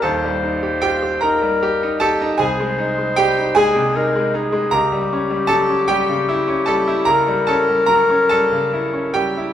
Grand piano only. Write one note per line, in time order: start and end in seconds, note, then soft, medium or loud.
0.02 2.35 D#1 medium
0.02 2.35 D#2 medium
0.02 0.77 A4 medium
0.02 0.81 A5 medium
0.24 0.55 G3 medium
0.43 0.74 D#4 medium
0.63 0.81 G4 medium
0.82 1.02 F4 soft
0.82 1.01 G4 medium
0.82 1.21 G5 loud
1.03 1.34 G4 medium
1.21 1.54 D#4 medium
1.21 1.97 A#4 medium
1.21 2.00 A#5 medium
1.42 1.73 G3 medium
1.63 1.94 G4 medium
1.83 2.13 D#4 medium
2.00 2.32 G4 medium
2.00 2.37 A4 medium
2.00 2.39 A5 loud
2.21 2.40 D#4 medium
2.38 4.70 C2 medium
2.38 3.12 G#4 medium
2.38 3.16 G#5 loud
2.60 2.90 G#3 medium
2.79 3.09 D#4 medium
2.98 3.29 G#3 soft
3.16 3.37 G3 medium
3.16 3.54 G4 medium
3.16 3.56 G5 loud
3.37 3.68 D#4 medium
3.55 3.88 G#3 medium
3.55 4.70 G#4 loud
3.55 4.73 G#5 loud
3.76 4.07 C3 medium
3.96 4.27 D#4 medium
4.15 4.47 G#3 medium
4.34 4.66 D#4 medium
4.52 4.73 G#3 medium
4.71 7.04 C#2 medium
4.71 5.47 A#4 medium
4.71 5.50 A#5 loud
4.92 5.24 G3 medium
5.13 5.44 C#4 medium
5.30 5.63 G3 medium
5.47 5.70 F#3 medium
5.47 5.86 A4 medium
5.47 5.89 A5 loud
5.69 6.01 C#4 medium
5.88 6.21 G3 medium
5.88 6.64 G4 medium
5.88 6.68 G5 loud
6.09 6.41 C#3 medium
6.29 6.61 E4 medium
6.48 6.80 C#4 medium
6.66 7.00 G3 medium
6.66 7.05 A4 medium
6.66 7.07 A5 loud
6.88 7.20 E4 medium
7.05 7.40 C#3 medium
7.05 7.45 A#4 medium
7.05 7.48 A#5 loud
7.27 7.61 G3 medium
7.47 7.82 C#4 medium
7.47 7.87 A4 medium
7.47 7.89 A5 loud
7.68 8.02 G3 soft
7.86 8.10 F#3 medium
7.86 8.28 A#4 medium
7.86 8.30 A#5 loud
8.10 8.44 C#4 medium
8.29 8.65 G3 medium
8.29 9.11 A4 medium
8.29 9.15 A5 loud
8.52 8.86 C#3 medium
8.73 9.07 E4 medium
8.93 9.28 C#4 medium
9.14 9.49 G3 medium
9.14 9.53 G4 medium
9.14 9.53 G5 medium
9.37 9.53 E4 medium